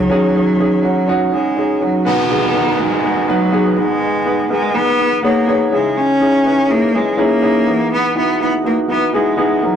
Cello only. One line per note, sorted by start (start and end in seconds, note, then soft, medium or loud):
0.00 1.29 F#3 loud
1.33 1.83 G#3 medium
1.82 2.08 F#3 medium
2.06 2.81 B3 medium
2.79 3.30 G#3 loud
3.28 3.78 F#3 loud
3.77 4.50 G#3 loud
4.50 4.76 G#3 loud
4.75 5.23 B3 loud
5.24 5.69 A#3 loud
5.73 5.99 G#3 loud
5.97 6.72 C#4 loud
6.71 6.96 A#3 loud
6.95 7.21 G#3 loud
7.19 7.92 A#3 loud
7.93 8.15 B3 loud
8.17 8.39 B3 loud
8.42 8.52 B3 loud
8.66 8.77 A#3 loud
8.90 9.12 B3 loud
9.15 9.65 G#3 medium
9.63 9.76 F#3 medium